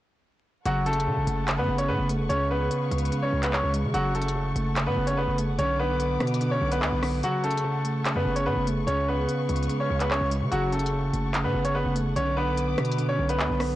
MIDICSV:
0, 0, Header, 1, 6, 480
1, 0, Start_track
1, 0, Key_signature, 3, "minor"
1, 0, Tempo, 410959
1, 765, Time_signature, 4, 2, 24, 8
1, 16066, End_track
2, 0, Start_track
2, 0, Title_t, "String section"
2, 0, Program_c, 0, 48
2, 764, Note_on_c, 0, 78, 79
2, 765, Note_on_c, 0, 69, 85
2, 766, Note_on_c, 0, 85, 96
2, 2666, Note_off_c, 0, 69, 0
2, 2666, Note_off_c, 0, 78, 0
2, 2685, Note_on_c, 0, 71, 86
2, 2685, Note_on_c, 0, 77, 78
2, 4586, Note_off_c, 0, 71, 0
2, 4586, Note_off_c, 0, 77, 0
2, 4604, Note_on_c, 0, 69, 86
2, 4605, Note_on_c, 0, 78, 80
2, 6479, Note_off_c, 0, 85, 0
2, 6506, Note_off_c, 0, 69, 0
2, 6525, Note_on_c, 0, 71, 87
2, 6525, Note_on_c, 0, 86, 95
2, 8426, Note_off_c, 0, 71, 0
2, 8426, Note_off_c, 0, 86, 0
2, 8447, Note_on_c, 0, 69, 87
2, 8447, Note_on_c, 0, 85, 96
2, 10318, Note_off_c, 0, 78, 0
2, 10347, Note_off_c, 0, 69, 0
2, 10368, Note_on_c, 0, 71, 88
2, 10368, Note_on_c, 0, 77, 76
2, 12267, Note_off_c, 0, 77, 0
2, 12268, Note_off_c, 0, 71, 0
2, 12286, Note_on_c, 0, 78, 78
2, 12288, Note_on_c, 0, 69, 88
2, 14160, Note_off_c, 0, 85, 0
2, 14187, Note_off_c, 0, 69, 0
2, 14206, Note_on_c, 0, 71, 85
2, 14206, Note_on_c, 0, 86, 96
2, 16066, Note_off_c, 0, 71, 0
2, 16066, Note_off_c, 0, 78, 0
2, 16066, Note_off_c, 0, 86, 0
2, 16066, End_track
3, 0, Start_track
3, 0, Title_t, "Grand piano"
3, 0, Program_c, 1, 0
3, 770, Note_on_c, 1, 66, 102
3, 780, Note_on_c, 1, 54, 80
3, 976, Note_off_c, 1, 66, 0
3, 982, Note_off_c, 1, 54, 0
3, 1007, Note_on_c, 1, 69, 84
3, 1017, Note_on_c, 1, 57, 65
3, 1800, Note_off_c, 1, 69, 0
3, 1804, Note_off_c, 1, 57, 0
3, 1849, Note_on_c, 1, 71, 78
3, 1857, Note_on_c, 1, 59, 65
3, 2056, Note_off_c, 1, 71, 0
3, 2060, Note_off_c, 1, 59, 0
3, 2080, Note_on_c, 1, 73, 74
3, 2089, Note_on_c, 1, 61, 55
3, 2186, Note_off_c, 1, 73, 0
3, 2192, Note_off_c, 1, 61, 0
3, 2200, Note_on_c, 1, 71, 88
3, 2210, Note_on_c, 1, 59, 66
3, 2411, Note_off_c, 1, 71, 0
3, 2416, Note_off_c, 1, 59, 0
3, 2678, Note_on_c, 1, 73, 103
3, 2688, Note_on_c, 1, 61, 76
3, 2890, Note_off_c, 1, 73, 0
3, 2895, Note_off_c, 1, 61, 0
3, 2928, Note_on_c, 1, 71, 82
3, 2937, Note_on_c, 1, 59, 63
3, 3720, Note_off_c, 1, 71, 0
3, 3724, Note_off_c, 1, 59, 0
3, 3767, Note_on_c, 1, 73, 78
3, 3776, Note_on_c, 1, 61, 64
3, 3974, Note_off_c, 1, 73, 0
3, 3979, Note_off_c, 1, 61, 0
3, 4006, Note_on_c, 1, 71, 76
3, 4015, Note_on_c, 1, 59, 58
3, 4110, Note_off_c, 1, 71, 0
3, 4115, Note_off_c, 1, 59, 0
3, 4125, Note_on_c, 1, 73, 94
3, 4134, Note_on_c, 1, 61, 65
3, 4333, Note_off_c, 1, 73, 0
3, 4338, Note_off_c, 1, 61, 0
3, 4601, Note_on_c, 1, 66, 114
3, 4610, Note_on_c, 1, 54, 88
3, 4811, Note_off_c, 1, 66, 0
3, 4816, Note_off_c, 1, 54, 0
3, 4849, Note_on_c, 1, 69, 75
3, 4858, Note_on_c, 1, 57, 56
3, 5641, Note_off_c, 1, 69, 0
3, 5645, Note_off_c, 1, 57, 0
3, 5683, Note_on_c, 1, 71, 81
3, 5692, Note_on_c, 1, 59, 63
3, 5892, Note_off_c, 1, 71, 0
3, 5897, Note_off_c, 1, 59, 0
3, 5920, Note_on_c, 1, 73, 75
3, 5929, Note_on_c, 1, 61, 57
3, 6026, Note_off_c, 1, 73, 0
3, 6032, Note_off_c, 1, 61, 0
3, 6041, Note_on_c, 1, 71, 82
3, 6050, Note_on_c, 1, 59, 62
3, 6251, Note_off_c, 1, 71, 0
3, 6256, Note_off_c, 1, 59, 0
3, 6523, Note_on_c, 1, 73, 102
3, 6532, Note_on_c, 1, 61, 72
3, 6732, Note_off_c, 1, 73, 0
3, 6737, Note_off_c, 1, 61, 0
3, 6767, Note_on_c, 1, 71, 86
3, 6776, Note_on_c, 1, 59, 72
3, 7559, Note_off_c, 1, 71, 0
3, 7564, Note_off_c, 1, 59, 0
3, 7606, Note_on_c, 1, 73, 83
3, 7615, Note_on_c, 1, 61, 65
3, 7814, Note_off_c, 1, 73, 0
3, 7819, Note_off_c, 1, 61, 0
3, 7845, Note_on_c, 1, 71, 81
3, 7854, Note_on_c, 1, 59, 65
3, 8409, Note_off_c, 1, 71, 0
3, 8414, Note_off_c, 1, 59, 0
3, 8451, Note_on_c, 1, 66, 107
3, 8460, Note_on_c, 1, 54, 81
3, 8657, Note_off_c, 1, 66, 0
3, 8662, Note_off_c, 1, 54, 0
3, 8689, Note_on_c, 1, 69, 81
3, 8698, Note_on_c, 1, 57, 65
3, 9480, Note_off_c, 1, 69, 0
3, 9485, Note_off_c, 1, 57, 0
3, 9529, Note_on_c, 1, 71, 79
3, 9538, Note_on_c, 1, 59, 66
3, 9736, Note_off_c, 1, 71, 0
3, 9741, Note_off_c, 1, 59, 0
3, 9760, Note_on_c, 1, 73, 74
3, 9770, Note_on_c, 1, 61, 58
3, 9867, Note_off_c, 1, 73, 0
3, 9872, Note_off_c, 1, 61, 0
3, 9881, Note_on_c, 1, 71, 88
3, 9890, Note_on_c, 1, 59, 69
3, 10091, Note_off_c, 1, 71, 0
3, 10096, Note_off_c, 1, 59, 0
3, 10359, Note_on_c, 1, 73, 99
3, 10368, Note_on_c, 1, 61, 75
3, 10570, Note_off_c, 1, 73, 0
3, 10575, Note_off_c, 1, 61, 0
3, 10608, Note_on_c, 1, 71, 80
3, 10617, Note_on_c, 1, 59, 60
3, 11400, Note_off_c, 1, 71, 0
3, 11405, Note_off_c, 1, 59, 0
3, 11447, Note_on_c, 1, 73, 72
3, 11456, Note_on_c, 1, 61, 63
3, 11654, Note_off_c, 1, 73, 0
3, 11660, Note_off_c, 1, 61, 0
3, 11686, Note_on_c, 1, 71, 76
3, 11695, Note_on_c, 1, 59, 59
3, 11790, Note_off_c, 1, 71, 0
3, 11795, Note_off_c, 1, 59, 0
3, 11806, Note_on_c, 1, 73, 95
3, 11815, Note_on_c, 1, 61, 66
3, 12014, Note_off_c, 1, 73, 0
3, 12019, Note_off_c, 1, 61, 0
3, 12281, Note_on_c, 1, 66, 115
3, 12290, Note_on_c, 1, 54, 91
3, 12491, Note_off_c, 1, 66, 0
3, 12496, Note_off_c, 1, 54, 0
3, 12528, Note_on_c, 1, 69, 74
3, 12538, Note_on_c, 1, 57, 55
3, 13320, Note_off_c, 1, 69, 0
3, 13325, Note_off_c, 1, 57, 0
3, 13363, Note_on_c, 1, 71, 79
3, 13372, Note_on_c, 1, 59, 61
3, 13572, Note_off_c, 1, 71, 0
3, 13577, Note_off_c, 1, 59, 0
3, 13602, Note_on_c, 1, 73, 77
3, 13612, Note_on_c, 1, 61, 55
3, 13708, Note_off_c, 1, 73, 0
3, 13713, Note_off_c, 1, 61, 0
3, 13722, Note_on_c, 1, 71, 82
3, 13732, Note_on_c, 1, 59, 62
3, 13932, Note_off_c, 1, 71, 0
3, 13937, Note_off_c, 1, 59, 0
3, 14204, Note_on_c, 1, 73, 99
3, 14213, Note_on_c, 1, 61, 71
3, 14413, Note_off_c, 1, 73, 0
3, 14418, Note_off_c, 1, 61, 0
3, 14445, Note_on_c, 1, 71, 85
3, 14454, Note_on_c, 1, 59, 75
3, 15238, Note_off_c, 1, 71, 0
3, 15243, Note_off_c, 1, 59, 0
3, 15285, Note_on_c, 1, 73, 86
3, 15294, Note_on_c, 1, 61, 63
3, 15493, Note_off_c, 1, 73, 0
3, 15498, Note_off_c, 1, 61, 0
3, 15524, Note_on_c, 1, 71, 79
3, 15533, Note_on_c, 1, 59, 64
3, 16066, Note_off_c, 1, 59, 0
3, 16066, Note_off_c, 1, 71, 0
3, 16066, End_track
4, 0, Start_track
4, 0, Title_t, "Tine electric piano"
4, 0, Program_c, 2, 4
4, 766, Note_on_c, 2, 49, 95
4, 990, Note_off_c, 2, 49, 0
4, 999, Control_c, 2, 64, 127
4, 1004, Note_on_c, 2, 49, 84
4, 1229, Note_off_c, 2, 49, 0
4, 1243, Note_on_c, 2, 49, 86
4, 1478, Note_on_c, 2, 57, 88
4, 1710, Note_off_c, 2, 49, 0
4, 1724, Note_on_c, 2, 49, 90
4, 1954, Note_off_c, 2, 49, 0
4, 1968, Note_on_c, 2, 49, 82
4, 2437, Note_off_c, 2, 57, 0
4, 2451, Note_on_c, 2, 57, 86
4, 2674, Note_off_c, 2, 49, 0
4, 2688, Note_off_c, 2, 57, 0
4, 2689, Note_on_c, 2, 49, 94
4, 2702, Control_c, 2, 64, 0
4, 2894, Control_c, 2, 64, 127
4, 2915, Note_off_c, 2, 49, 0
4, 2929, Note_on_c, 2, 49, 86
4, 3148, Note_off_c, 2, 49, 0
4, 3162, Note_on_c, 2, 49, 87
4, 3406, Note_on_c, 2, 56, 86
4, 3627, Note_off_c, 2, 49, 0
4, 3641, Note_on_c, 2, 49, 92
4, 3862, Note_off_c, 2, 49, 0
4, 3876, Note_on_c, 2, 49, 79
4, 4344, Note_off_c, 2, 56, 0
4, 4358, Note_on_c, 2, 56, 83
4, 4588, Note_off_c, 2, 49, 0
4, 4602, Note_off_c, 2, 56, 0
4, 4602, Note_on_c, 2, 49, 103
4, 4620, Control_c, 2, 64, 0
4, 4823, Note_off_c, 2, 49, 0
4, 4837, Note_on_c, 2, 49, 79
4, 4843, Control_c, 2, 64, 127
4, 5074, Note_off_c, 2, 49, 0
4, 5088, Note_on_c, 2, 49, 89
4, 5325, Note_on_c, 2, 57, 90
4, 5550, Note_off_c, 2, 49, 0
4, 5564, Note_on_c, 2, 49, 88
4, 5790, Note_off_c, 2, 49, 0
4, 5804, Note_on_c, 2, 49, 85
4, 6274, Note_off_c, 2, 57, 0
4, 6288, Note_on_c, 2, 57, 79
4, 6525, Note_off_c, 2, 49, 0
4, 6527, Note_off_c, 2, 57, 0
4, 6535, Note_on_c, 2, 50, 97
4, 6541, Control_c, 2, 64, 0
4, 6718, Control_c, 2, 64, 127
4, 6753, Note_off_c, 2, 50, 0
4, 6767, Note_on_c, 2, 50, 81
4, 6991, Note_off_c, 2, 50, 0
4, 7005, Note_on_c, 2, 50, 86
4, 7245, Note_on_c, 2, 59, 83
4, 7473, Note_off_c, 2, 50, 0
4, 7487, Note_on_c, 2, 50, 93
4, 7709, Note_off_c, 2, 50, 0
4, 7724, Note_on_c, 2, 50, 73
4, 8190, Note_off_c, 2, 59, 0
4, 8204, Note_on_c, 2, 59, 86
4, 8444, Note_off_c, 2, 50, 0
4, 8445, Note_off_c, 2, 59, 0
4, 8447, Note_on_c, 2, 49, 96
4, 8457, Control_c, 2, 64, 0
4, 8672, Note_off_c, 2, 49, 0
4, 8674, Control_c, 2, 64, 127
4, 8686, Note_on_c, 2, 49, 83
4, 8912, Note_off_c, 2, 49, 0
4, 8926, Note_on_c, 2, 49, 85
4, 9159, Note_on_c, 2, 57, 90
4, 9391, Note_off_c, 2, 49, 0
4, 9405, Note_on_c, 2, 49, 89
4, 9637, Note_off_c, 2, 49, 0
4, 9651, Note_on_c, 2, 49, 87
4, 10118, Note_off_c, 2, 57, 0
4, 10132, Note_on_c, 2, 57, 87
4, 10354, Note_off_c, 2, 49, 0
4, 10368, Note_on_c, 2, 49, 97
4, 10369, Note_off_c, 2, 57, 0
4, 10382, Control_c, 2, 64, 0
4, 10594, Note_off_c, 2, 49, 0
4, 10608, Note_on_c, 2, 49, 85
4, 10612, Control_c, 2, 64, 127
4, 10827, Note_off_c, 2, 49, 0
4, 10841, Note_on_c, 2, 49, 90
4, 11087, Note_on_c, 2, 56, 85
4, 11310, Note_off_c, 2, 49, 0
4, 11324, Note_on_c, 2, 49, 93
4, 11546, Note_off_c, 2, 49, 0
4, 11560, Note_on_c, 2, 49, 79
4, 12028, Note_off_c, 2, 56, 0
4, 12042, Note_on_c, 2, 56, 79
4, 12270, Note_off_c, 2, 49, 0
4, 12284, Note_off_c, 2, 56, 0
4, 12284, Note_on_c, 2, 49, 102
4, 12299, Control_c, 2, 64, 0
4, 12504, Note_off_c, 2, 49, 0
4, 12511, Control_c, 2, 64, 127
4, 12518, Note_on_c, 2, 49, 82
4, 12753, Note_off_c, 2, 49, 0
4, 12767, Note_on_c, 2, 49, 88
4, 13004, Note_on_c, 2, 57, 86
4, 13230, Note_off_c, 2, 49, 0
4, 13244, Note_on_c, 2, 49, 90
4, 13469, Note_off_c, 2, 49, 0
4, 13484, Note_on_c, 2, 49, 86
4, 13955, Note_off_c, 2, 57, 0
4, 13969, Note_on_c, 2, 57, 81
4, 14204, Note_off_c, 2, 49, 0
4, 14207, Note_off_c, 2, 57, 0
4, 14214, Note_on_c, 2, 50, 97
4, 14222, Control_c, 2, 64, 0
4, 14422, Control_c, 2, 64, 127
4, 14434, Note_off_c, 2, 50, 0
4, 14448, Note_on_c, 2, 50, 82
4, 14670, Note_off_c, 2, 50, 0
4, 14684, Note_on_c, 2, 50, 83
4, 14925, Note_on_c, 2, 59, 81
4, 15155, Note_off_c, 2, 50, 0
4, 15169, Note_on_c, 2, 50, 91
4, 15390, Note_off_c, 2, 50, 0
4, 15405, Note_on_c, 2, 50, 71
4, 15870, Note_off_c, 2, 59, 0
4, 15884, Note_on_c, 2, 59, 85
4, 16066, Note_off_c, 2, 50, 0
4, 16066, Note_off_c, 2, 59, 0
4, 16066, End_track
5, 0, Start_track
5, 0, Title_t, "808-style bass"
5, 0, Program_c, 3, 38
5, 766, Note_on_c, 3, 30, 106
5, 1245, Note_on_c, 3, 49, 102
5, 1262, Note_off_c, 3, 30, 0
5, 1366, Note_on_c, 3, 30, 102
5, 1383, Note_off_c, 3, 49, 0
5, 1479, Note_off_c, 3, 30, 0
5, 1485, Note_on_c, 3, 30, 112
5, 1846, Note_on_c, 3, 42, 101
5, 1863, Note_off_c, 3, 30, 0
5, 1957, Note_off_c, 3, 42, 0
5, 1964, Note_on_c, 3, 30, 108
5, 2206, Note_on_c, 3, 45, 104
5, 2223, Note_off_c, 3, 30, 0
5, 2319, Note_off_c, 3, 45, 0
5, 2324, Note_on_c, 3, 30, 106
5, 2566, Note_on_c, 3, 29, 101
5, 2583, Note_off_c, 3, 30, 0
5, 2679, Note_off_c, 3, 29, 0
5, 2685, Note_on_c, 3, 37, 110
5, 3146, Note_off_c, 3, 37, 0
5, 3403, Note_on_c, 3, 37, 105
5, 3635, Note_off_c, 3, 37, 0
5, 3885, Note_on_c, 3, 37, 103
5, 4231, Note_off_c, 3, 37, 0
5, 4244, Note_on_c, 3, 37, 109
5, 4485, Note_on_c, 3, 49, 101
5, 4502, Note_off_c, 3, 37, 0
5, 4596, Note_off_c, 3, 49, 0
5, 4603, Note_on_c, 3, 30, 111
5, 5295, Note_off_c, 3, 30, 0
5, 5323, Note_on_c, 3, 30, 112
5, 5684, Note_on_c, 3, 45, 102
5, 5701, Note_off_c, 3, 30, 0
5, 5799, Note_off_c, 3, 45, 0
5, 5803, Note_on_c, 3, 30, 108
5, 6150, Note_off_c, 3, 30, 0
5, 6164, Note_on_c, 3, 30, 103
5, 6405, Note_on_c, 3, 29, 102
5, 6422, Note_off_c, 3, 30, 0
5, 6519, Note_off_c, 3, 29, 0
5, 6524, Note_on_c, 3, 35, 112
5, 7216, Note_off_c, 3, 35, 0
5, 7245, Note_on_c, 3, 47, 113
5, 7706, Note_off_c, 3, 47, 0
5, 7726, Note_on_c, 3, 35, 110
5, 7967, Note_on_c, 3, 38, 102
5, 7984, Note_off_c, 3, 35, 0
5, 8080, Note_off_c, 3, 38, 0
5, 8087, Note_on_c, 3, 35, 98
5, 8432, Note_off_c, 3, 35, 0
5, 9526, Note_on_c, 3, 42, 106
5, 9640, Note_off_c, 3, 42, 0
5, 9645, Note_on_c, 3, 30, 106
5, 9886, Note_on_c, 3, 45, 101
5, 9903, Note_off_c, 3, 30, 0
5, 10000, Note_off_c, 3, 45, 0
5, 10005, Note_on_c, 3, 30, 105
5, 10246, Note_on_c, 3, 29, 102
5, 10264, Note_off_c, 3, 30, 0
5, 10360, Note_off_c, 3, 29, 0
5, 10365, Note_on_c, 3, 37, 113
5, 10826, Note_off_c, 3, 37, 0
5, 11085, Note_on_c, 3, 37, 111
5, 11316, Note_off_c, 3, 37, 0
5, 11566, Note_on_c, 3, 37, 106
5, 11911, Note_off_c, 3, 37, 0
5, 11924, Note_on_c, 3, 37, 109
5, 12164, Note_on_c, 3, 49, 105
5, 12182, Note_off_c, 3, 37, 0
5, 12279, Note_off_c, 3, 49, 0
5, 12285, Note_on_c, 3, 30, 115
5, 12976, Note_off_c, 3, 30, 0
5, 13005, Note_on_c, 3, 30, 113
5, 13364, Note_on_c, 3, 45, 101
5, 13381, Note_off_c, 3, 30, 0
5, 13479, Note_off_c, 3, 45, 0
5, 13484, Note_on_c, 3, 30, 104
5, 13830, Note_off_c, 3, 30, 0
5, 13843, Note_on_c, 3, 30, 103
5, 14084, Note_on_c, 3, 29, 99
5, 14102, Note_off_c, 3, 30, 0
5, 14199, Note_off_c, 3, 29, 0
5, 14205, Note_on_c, 3, 35, 109
5, 14896, Note_off_c, 3, 35, 0
5, 14926, Note_on_c, 3, 47, 108
5, 15386, Note_off_c, 3, 47, 0
5, 15405, Note_on_c, 3, 35, 109
5, 15646, Note_on_c, 3, 38, 103
5, 15664, Note_off_c, 3, 35, 0
5, 15760, Note_off_c, 3, 38, 0
5, 15766, Note_on_c, 3, 35, 96
5, 16066, Note_off_c, 3, 35, 0
5, 16066, End_track
6, 0, Start_track
6, 0, Title_t, "Drums"
6, 765, Note_on_c, 9, 42, 84
6, 882, Note_off_c, 9, 42, 0
6, 1006, Note_on_c, 9, 42, 48
6, 1086, Note_off_c, 9, 42, 0
6, 1086, Note_on_c, 9, 42, 65
6, 1166, Note_off_c, 9, 42, 0
6, 1166, Note_on_c, 9, 42, 85
6, 1283, Note_off_c, 9, 42, 0
6, 1485, Note_on_c, 9, 42, 89
6, 1602, Note_off_c, 9, 42, 0
6, 1725, Note_on_c, 9, 42, 73
6, 1726, Note_on_c, 9, 39, 118
6, 1842, Note_off_c, 9, 39, 0
6, 1842, Note_off_c, 9, 42, 0
6, 2083, Note_on_c, 9, 42, 94
6, 2200, Note_off_c, 9, 42, 0
6, 2445, Note_on_c, 9, 42, 103
6, 2562, Note_off_c, 9, 42, 0
6, 2684, Note_on_c, 9, 42, 85
6, 2801, Note_off_c, 9, 42, 0
6, 3165, Note_on_c, 9, 42, 90
6, 3282, Note_off_c, 9, 42, 0
6, 3405, Note_on_c, 9, 42, 82
6, 3485, Note_off_c, 9, 42, 0
6, 3485, Note_on_c, 9, 42, 65
6, 3565, Note_off_c, 9, 42, 0
6, 3565, Note_on_c, 9, 42, 52
6, 3645, Note_off_c, 9, 42, 0
6, 3645, Note_on_c, 9, 42, 72
6, 3762, Note_off_c, 9, 42, 0
6, 4004, Note_on_c, 9, 42, 93
6, 4005, Note_on_c, 9, 39, 67
6, 4120, Note_off_c, 9, 42, 0
6, 4122, Note_off_c, 9, 39, 0
6, 4124, Note_on_c, 9, 39, 119
6, 4241, Note_off_c, 9, 39, 0
6, 4366, Note_on_c, 9, 42, 100
6, 4483, Note_off_c, 9, 42, 0
6, 4604, Note_on_c, 9, 42, 83
6, 4721, Note_off_c, 9, 42, 0
6, 4845, Note_on_c, 9, 42, 49
6, 4924, Note_off_c, 9, 42, 0
6, 4924, Note_on_c, 9, 42, 66
6, 5004, Note_off_c, 9, 42, 0
6, 5004, Note_on_c, 9, 42, 83
6, 5121, Note_off_c, 9, 42, 0
6, 5324, Note_on_c, 9, 42, 88
6, 5441, Note_off_c, 9, 42, 0
6, 5563, Note_on_c, 9, 42, 73
6, 5564, Note_on_c, 9, 39, 120
6, 5680, Note_off_c, 9, 42, 0
6, 5681, Note_off_c, 9, 39, 0
6, 5923, Note_on_c, 9, 42, 90
6, 6040, Note_off_c, 9, 42, 0
6, 6286, Note_on_c, 9, 42, 100
6, 6403, Note_off_c, 9, 42, 0
6, 6525, Note_on_c, 9, 42, 86
6, 6642, Note_off_c, 9, 42, 0
6, 7006, Note_on_c, 9, 42, 92
6, 7122, Note_off_c, 9, 42, 0
6, 7246, Note_on_c, 9, 37, 97
6, 7246, Note_on_c, 9, 42, 51
6, 7325, Note_off_c, 9, 42, 0
6, 7325, Note_on_c, 9, 42, 69
6, 7362, Note_off_c, 9, 37, 0
6, 7406, Note_off_c, 9, 42, 0
6, 7406, Note_on_c, 9, 42, 88
6, 7486, Note_off_c, 9, 42, 0
6, 7486, Note_on_c, 9, 42, 68
6, 7603, Note_off_c, 9, 42, 0
6, 7844, Note_on_c, 9, 42, 91
6, 7961, Note_off_c, 9, 42, 0
6, 7966, Note_on_c, 9, 39, 125
6, 8083, Note_off_c, 9, 39, 0
6, 8206, Note_on_c, 9, 37, 103
6, 8208, Note_on_c, 9, 46, 74
6, 8323, Note_off_c, 9, 37, 0
6, 8325, Note_off_c, 9, 46, 0
6, 8446, Note_on_c, 9, 42, 86
6, 8563, Note_off_c, 9, 42, 0
6, 8686, Note_on_c, 9, 42, 47
6, 8767, Note_off_c, 9, 42, 0
6, 8767, Note_on_c, 9, 42, 67
6, 8847, Note_off_c, 9, 42, 0
6, 8847, Note_on_c, 9, 42, 82
6, 8964, Note_off_c, 9, 42, 0
6, 9166, Note_on_c, 9, 42, 89
6, 9283, Note_off_c, 9, 42, 0
6, 9407, Note_on_c, 9, 42, 69
6, 9408, Note_on_c, 9, 39, 117
6, 9524, Note_off_c, 9, 39, 0
6, 9524, Note_off_c, 9, 42, 0
6, 9765, Note_on_c, 9, 42, 92
6, 9882, Note_off_c, 9, 42, 0
6, 10128, Note_on_c, 9, 42, 103
6, 10245, Note_off_c, 9, 42, 0
6, 10366, Note_on_c, 9, 42, 88
6, 10483, Note_off_c, 9, 42, 0
6, 10846, Note_on_c, 9, 42, 96
6, 10963, Note_off_c, 9, 42, 0
6, 11085, Note_on_c, 9, 42, 84
6, 11165, Note_off_c, 9, 42, 0
6, 11165, Note_on_c, 9, 42, 66
6, 11244, Note_off_c, 9, 42, 0
6, 11244, Note_on_c, 9, 42, 51
6, 11324, Note_off_c, 9, 42, 0
6, 11324, Note_on_c, 9, 42, 70
6, 11441, Note_off_c, 9, 42, 0
6, 11684, Note_on_c, 9, 42, 96
6, 11685, Note_on_c, 9, 39, 62
6, 11800, Note_off_c, 9, 42, 0
6, 11802, Note_off_c, 9, 39, 0
6, 11805, Note_on_c, 9, 39, 125
6, 11922, Note_off_c, 9, 39, 0
6, 12046, Note_on_c, 9, 42, 99
6, 12163, Note_off_c, 9, 42, 0
6, 12284, Note_on_c, 9, 42, 83
6, 12401, Note_off_c, 9, 42, 0
6, 12525, Note_on_c, 9, 42, 49
6, 12606, Note_off_c, 9, 42, 0
6, 12606, Note_on_c, 9, 42, 66
6, 12685, Note_off_c, 9, 42, 0
6, 12685, Note_on_c, 9, 42, 83
6, 12802, Note_off_c, 9, 42, 0
6, 13006, Note_on_c, 9, 42, 88
6, 13122, Note_off_c, 9, 42, 0
6, 13246, Note_on_c, 9, 39, 118
6, 13246, Note_on_c, 9, 42, 73
6, 13362, Note_off_c, 9, 42, 0
6, 13363, Note_off_c, 9, 39, 0
6, 13604, Note_on_c, 9, 42, 92
6, 13721, Note_off_c, 9, 42, 0
6, 13967, Note_on_c, 9, 42, 102
6, 14084, Note_off_c, 9, 42, 0
6, 14205, Note_on_c, 9, 42, 88
6, 14322, Note_off_c, 9, 42, 0
6, 14686, Note_on_c, 9, 42, 92
6, 14803, Note_off_c, 9, 42, 0
6, 14925, Note_on_c, 9, 37, 100
6, 14925, Note_on_c, 9, 42, 49
6, 15006, Note_off_c, 9, 42, 0
6, 15006, Note_on_c, 9, 42, 65
6, 15042, Note_off_c, 9, 37, 0
6, 15086, Note_off_c, 9, 42, 0
6, 15086, Note_on_c, 9, 42, 86
6, 15166, Note_off_c, 9, 42, 0
6, 15166, Note_on_c, 9, 42, 72
6, 15283, Note_off_c, 9, 42, 0
6, 15524, Note_on_c, 9, 42, 94
6, 15641, Note_off_c, 9, 42, 0
6, 15646, Note_on_c, 9, 39, 127
6, 15763, Note_off_c, 9, 39, 0
6, 15885, Note_on_c, 9, 37, 99
6, 15887, Note_on_c, 9, 46, 73
6, 16002, Note_off_c, 9, 37, 0
6, 16004, Note_off_c, 9, 46, 0
6, 16066, End_track
0, 0, End_of_file